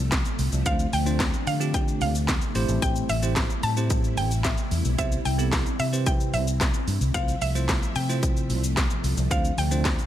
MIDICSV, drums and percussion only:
0, 0, Header, 1, 2, 480
1, 0, Start_track
1, 0, Tempo, 540541
1, 587, Time_signature, 4, 2, 24, 8
1, 8935, End_track
2, 0, Start_track
2, 0, Title_t, "Drums"
2, 106, Note_on_c, 9, 39, 125
2, 107, Note_on_c, 9, 42, 80
2, 107, Note_on_c, 9, 82, 76
2, 108, Note_on_c, 9, 36, 121
2, 112, Note_on_c, 9, 38, 103
2, 195, Note_off_c, 9, 39, 0
2, 196, Note_off_c, 9, 42, 0
2, 196, Note_off_c, 9, 82, 0
2, 197, Note_off_c, 9, 36, 0
2, 200, Note_off_c, 9, 38, 0
2, 223, Note_on_c, 9, 82, 60
2, 312, Note_off_c, 9, 82, 0
2, 345, Note_on_c, 9, 46, 73
2, 345, Note_on_c, 9, 82, 52
2, 434, Note_off_c, 9, 46, 0
2, 434, Note_off_c, 9, 82, 0
2, 463, Note_on_c, 9, 82, 66
2, 552, Note_off_c, 9, 82, 0
2, 584, Note_on_c, 9, 42, 81
2, 584, Note_on_c, 9, 82, 75
2, 586, Note_on_c, 9, 36, 110
2, 673, Note_off_c, 9, 42, 0
2, 673, Note_off_c, 9, 82, 0
2, 675, Note_off_c, 9, 36, 0
2, 704, Note_on_c, 9, 82, 65
2, 793, Note_off_c, 9, 82, 0
2, 825, Note_on_c, 9, 46, 76
2, 825, Note_on_c, 9, 82, 56
2, 914, Note_off_c, 9, 46, 0
2, 914, Note_off_c, 9, 82, 0
2, 944, Note_on_c, 9, 82, 76
2, 1032, Note_off_c, 9, 82, 0
2, 1066, Note_on_c, 9, 39, 116
2, 1066, Note_on_c, 9, 42, 67
2, 1066, Note_on_c, 9, 82, 66
2, 1069, Note_on_c, 9, 36, 113
2, 1072, Note_on_c, 9, 38, 97
2, 1155, Note_off_c, 9, 39, 0
2, 1155, Note_off_c, 9, 42, 0
2, 1155, Note_off_c, 9, 82, 0
2, 1157, Note_off_c, 9, 36, 0
2, 1161, Note_off_c, 9, 38, 0
2, 1188, Note_on_c, 9, 82, 52
2, 1277, Note_off_c, 9, 82, 0
2, 1305, Note_on_c, 9, 46, 67
2, 1305, Note_on_c, 9, 82, 48
2, 1394, Note_off_c, 9, 46, 0
2, 1394, Note_off_c, 9, 82, 0
2, 1428, Note_on_c, 9, 82, 87
2, 1517, Note_off_c, 9, 82, 0
2, 1546, Note_on_c, 9, 42, 84
2, 1546, Note_on_c, 9, 82, 80
2, 1547, Note_on_c, 9, 36, 125
2, 1635, Note_off_c, 9, 42, 0
2, 1635, Note_off_c, 9, 82, 0
2, 1636, Note_off_c, 9, 36, 0
2, 1670, Note_on_c, 9, 82, 64
2, 1759, Note_off_c, 9, 82, 0
2, 1785, Note_on_c, 9, 46, 69
2, 1785, Note_on_c, 9, 82, 51
2, 1874, Note_off_c, 9, 46, 0
2, 1874, Note_off_c, 9, 82, 0
2, 1909, Note_on_c, 9, 82, 82
2, 1998, Note_off_c, 9, 82, 0
2, 2028, Note_on_c, 9, 39, 127
2, 2029, Note_on_c, 9, 42, 78
2, 2029, Note_on_c, 9, 82, 79
2, 2030, Note_on_c, 9, 36, 120
2, 2034, Note_on_c, 9, 38, 101
2, 2117, Note_off_c, 9, 39, 0
2, 2118, Note_off_c, 9, 42, 0
2, 2118, Note_off_c, 9, 82, 0
2, 2119, Note_off_c, 9, 36, 0
2, 2122, Note_off_c, 9, 38, 0
2, 2145, Note_on_c, 9, 82, 57
2, 2233, Note_off_c, 9, 82, 0
2, 2266, Note_on_c, 9, 46, 74
2, 2266, Note_on_c, 9, 82, 52
2, 2355, Note_off_c, 9, 46, 0
2, 2355, Note_off_c, 9, 82, 0
2, 2385, Note_on_c, 9, 82, 65
2, 2474, Note_off_c, 9, 82, 0
2, 2508, Note_on_c, 9, 36, 118
2, 2508, Note_on_c, 9, 42, 77
2, 2508, Note_on_c, 9, 82, 76
2, 2596, Note_off_c, 9, 42, 0
2, 2596, Note_off_c, 9, 82, 0
2, 2597, Note_off_c, 9, 36, 0
2, 2627, Note_on_c, 9, 82, 65
2, 2716, Note_off_c, 9, 82, 0
2, 2746, Note_on_c, 9, 46, 76
2, 2746, Note_on_c, 9, 82, 56
2, 2835, Note_off_c, 9, 46, 0
2, 2835, Note_off_c, 9, 82, 0
2, 2865, Note_on_c, 9, 82, 74
2, 2954, Note_off_c, 9, 82, 0
2, 2985, Note_on_c, 9, 39, 118
2, 2985, Note_on_c, 9, 42, 67
2, 2985, Note_on_c, 9, 82, 68
2, 2989, Note_on_c, 9, 36, 109
2, 2991, Note_on_c, 9, 38, 90
2, 3074, Note_off_c, 9, 39, 0
2, 3074, Note_off_c, 9, 42, 0
2, 3074, Note_off_c, 9, 82, 0
2, 3078, Note_off_c, 9, 36, 0
2, 3080, Note_off_c, 9, 38, 0
2, 3108, Note_on_c, 9, 82, 53
2, 3197, Note_off_c, 9, 82, 0
2, 3224, Note_on_c, 9, 46, 71
2, 3224, Note_on_c, 9, 82, 51
2, 3313, Note_off_c, 9, 46, 0
2, 3313, Note_off_c, 9, 82, 0
2, 3347, Note_on_c, 9, 82, 82
2, 3436, Note_off_c, 9, 82, 0
2, 3464, Note_on_c, 9, 42, 78
2, 3464, Note_on_c, 9, 82, 80
2, 3467, Note_on_c, 9, 36, 125
2, 3553, Note_off_c, 9, 42, 0
2, 3553, Note_off_c, 9, 82, 0
2, 3556, Note_off_c, 9, 36, 0
2, 3588, Note_on_c, 9, 82, 59
2, 3677, Note_off_c, 9, 82, 0
2, 3706, Note_on_c, 9, 46, 69
2, 3706, Note_on_c, 9, 82, 51
2, 3795, Note_off_c, 9, 46, 0
2, 3795, Note_off_c, 9, 82, 0
2, 3828, Note_on_c, 9, 82, 83
2, 3917, Note_off_c, 9, 82, 0
2, 3946, Note_on_c, 9, 39, 127
2, 3947, Note_on_c, 9, 42, 81
2, 3947, Note_on_c, 9, 82, 80
2, 3949, Note_on_c, 9, 36, 120
2, 3952, Note_on_c, 9, 38, 102
2, 4035, Note_off_c, 9, 39, 0
2, 4036, Note_off_c, 9, 42, 0
2, 4036, Note_off_c, 9, 82, 0
2, 4038, Note_off_c, 9, 36, 0
2, 4041, Note_off_c, 9, 38, 0
2, 4063, Note_on_c, 9, 82, 59
2, 4152, Note_off_c, 9, 82, 0
2, 4185, Note_on_c, 9, 46, 70
2, 4185, Note_on_c, 9, 82, 52
2, 4274, Note_off_c, 9, 46, 0
2, 4274, Note_off_c, 9, 82, 0
2, 4306, Note_on_c, 9, 82, 64
2, 4395, Note_off_c, 9, 82, 0
2, 4427, Note_on_c, 9, 36, 112
2, 4427, Note_on_c, 9, 42, 77
2, 4427, Note_on_c, 9, 82, 79
2, 4516, Note_off_c, 9, 36, 0
2, 4516, Note_off_c, 9, 42, 0
2, 4516, Note_off_c, 9, 82, 0
2, 4546, Note_on_c, 9, 82, 63
2, 4635, Note_off_c, 9, 82, 0
2, 4665, Note_on_c, 9, 46, 80
2, 4665, Note_on_c, 9, 82, 55
2, 4754, Note_off_c, 9, 46, 0
2, 4754, Note_off_c, 9, 82, 0
2, 4785, Note_on_c, 9, 82, 76
2, 4874, Note_off_c, 9, 82, 0
2, 4907, Note_on_c, 9, 39, 118
2, 4907, Note_on_c, 9, 42, 65
2, 4907, Note_on_c, 9, 82, 67
2, 4909, Note_on_c, 9, 36, 113
2, 4913, Note_on_c, 9, 38, 97
2, 4996, Note_off_c, 9, 39, 0
2, 4996, Note_off_c, 9, 42, 0
2, 4996, Note_off_c, 9, 82, 0
2, 4997, Note_off_c, 9, 36, 0
2, 5002, Note_off_c, 9, 38, 0
2, 5028, Note_on_c, 9, 82, 54
2, 5117, Note_off_c, 9, 82, 0
2, 5145, Note_on_c, 9, 46, 69
2, 5145, Note_on_c, 9, 82, 49
2, 5234, Note_off_c, 9, 46, 0
2, 5234, Note_off_c, 9, 82, 0
2, 5268, Note_on_c, 9, 82, 80
2, 5357, Note_off_c, 9, 82, 0
2, 5385, Note_on_c, 9, 42, 77
2, 5385, Note_on_c, 9, 82, 81
2, 5386, Note_on_c, 9, 36, 127
2, 5474, Note_off_c, 9, 42, 0
2, 5474, Note_off_c, 9, 82, 0
2, 5475, Note_off_c, 9, 36, 0
2, 5508, Note_on_c, 9, 82, 60
2, 5597, Note_off_c, 9, 82, 0
2, 5626, Note_on_c, 9, 46, 68
2, 5626, Note_on_c, 9, 82, 50
2, 5715, Note_off_c, 9, 46, 0
2, 5715, Note_off_c, 9, 82, 0
2, 5749, Note_on_c, 9, 82, 82
2, 5838, Note_off_c, 9, 82, 0
2, 5869, Note_on_c, 9, 39, 127
2, 5870, Note_on_c, 9, 36, 122
2, 5870, Note_on_c, 9, 42, 79
2, 5870, Note_on_c, 9, 82, 80
2, 5875, Note_on_c, 9, 38, 102
2, 5958, Note_off_c, 9, 36, 0
2, 5958, Note_off_c, 9, 39, 0
2, 5959, Note_off_c, 9, 42, 0
2, 5959, Note_off_c, 9, 82, 0
2, 5964, Note_off_c, 9, 38, 0
2, 5985, Note_on_c, 9, 82, 58
2, 6073, Note_off_c, 9, 82, 0
2, 6106, Note_on_c, 9, 46, 75
2, 6106, Note_on_c, 9, 82, 52
2, 6194, Note_off_c, 9, 46, 0
2, 6194, Note_off_c, 9, 82, 0
2, 6227, Note_on_c, 9, 82, 68
2, 6316, Note_off_c, 9, 82, 0
2, 6347, Note_on_c, 9, 36, 112
2, 6347, Note_on_c, 9, 42, 73
2, 6347, Note_on_c, 9, 82, 73
2, 6436, Note_off_c, 9, 36, 0
2, 6436, Note_off_c, 9, 42, 0
2, 6436, Note_off_c, 9, 82, 0
2, 6467, Note_on_c, 9, 82, 65
2, 6556, Note_off_c, 9, 82, 0
2, 6585, Note_on_c, 9, 46, 78
2, 6585, Note_on_c, 9, 82, 57
2, 6674, Note_off_c, 9, 46, 0
2, 6674, Note_off_c, 9, 82, 0
2, 6708, Note_on_c, 9, 82, 74
2, 6796, Note_off_c, 9, 82, 0
2, 6828, Note_on_c, 9, 39, 119
2, 6828, Note_on_c, 9, 42, 62
2, 6828, Note_on_c, 9, 82, 66
2, 6829, Note_on_c, 9, 36, 120
2, 6834, Note_on_c, 9, 38, 94
2, 6917, Note_off_c, 9, 39, 0
2, 6917, Note_off_c, 9, 42, 0
2, 6917, Note_off_c, 9, 82, 0
2, 6918, Note_off_c, 9, 36, 0
2, 6923, Note_off_c, 9, 38, 0
2, 6951, Note_on_c, 9, 82, 52
2, 7039, Note_off_c, 9, 82, 0
2, 7065, Note_on_c, 9, 46, 70
2, 7065, Note_on_c, 9, 82, 46
2, 7154, Note_off_c, 9, 46, 0
2, 7154, Note_off_c, 9, 82, 0
2, 7189, Note_on_c, 9, 82, 80
2, 7278, Note_off_c, 9, 82, 0
2, 7307, Note_on_c, 9, 36, 123
2, 7307, Note_on_c, 9, 42, 82
2, 7307, Note_on_c, 9, 82, 79
2, 7396, Note_off_c, 9, 36, 0
2, 7396, Note_off_c, 9, 42, 0
2, 7396, Note_off_c, 9, 82, 0
2, 7430, Note_on_c, 9, 82, 60
2, 7518, Note_off_c, 9, 82, 0
2, 7547, Note_on_c, 9, 46, 74
2, 7547, Note_on_c, 9, 82, 49
2, 7635, Note_off_c, 9, 46, 0
2, 7635, Note_off_c, 9, 82, 0
2, 7670, Note_on_c, 9, 82, 88
2, 7758, Note_off_c, 9, 82, 0
2, 7789, Note_on_c, 9, 39, 122
2, 7790, Note_on_c, 9, 36, 115
2, 7790, Note_on_c, 9, 42, 80
2, 7790, Note_on_c, 9, 82, 82
2, 7795, Note_on_c, 9, 38, 102
2, 7878, Note_off_c, 9, 39, 0
2, 7879, Note_off_c, 9, 36, 0
2, 7879, Note_off_c, 9, 42, 0
2, 7879, Note_off_c, 9, 82, 0
2, 7884, Note_off_c, 9, 38, 0
2, 7907, Note_on_c, 9, 82, 60
2, 7995, Note_off_c, 9, 82, 0
2, 8028, Note_on_c, 9, 46, 71
2, 8028, Note_on_c, 9, 82, 51
2, 8117, Note_off_c, 9, 46, 0
2, 8117, Note_off_c, 9, 82, 0
2, 8146, Note_on_c, 9, 82, 67
2, 8235, Note_off_c, 9, 82, 0
2, 8268, Note_on_c, 9, 36, 115
2, 8269, Note_on_c, 9, 42, 79
2, 8269, Note_on_c, 9, 82, 76
2, 8357, Note_off_c, 9, 36, 0
2, 8357, Note_off_c, 9, 42, 0
2, 8357, Note_off_c, 9, 82, 0
2, 8388, Note_on_c, 9, 82, 65
2, 8477, Note_off_c, 9, 82, 0
2, 8506, Note_on_c, 9, 46, 78
2, 8506, Note_on_c, 9, 82, 58
2, 8595, Note_off_c, 9, 46, 0
2, 8595, Note_off_c, 9, 82, 0
2, 8627, Note_on_c, 9, 82, 75
2, 8715, Note_off_c, 9, 82, 0
2, 8748, Note_on_c, 9, 39, 118
2, 8748, Note_on_c, 9, 42, 66
2, 8748, Note_on_c, 9, 82, 63
2, 8749, Note_on_c, 9, 36, 117
2, 8754, Note_on_c, 9, 38, 99
2, 8837, Note_off_c, 9, 39, 0
2, 8837, Note_off_c, 9, 42, 0
2, 8837, Note_off_c, 9, 82, 0
2, 8838, Note_off_c, 9, 36, 0
2, 8843, Note_off_c, 9, 38, 0
2, 8869, Note_on_c, 9, 82, 53
2, 8935, Note_off_c, 9, 82, 0
2, 8935, End_track
0, 0, End_of_file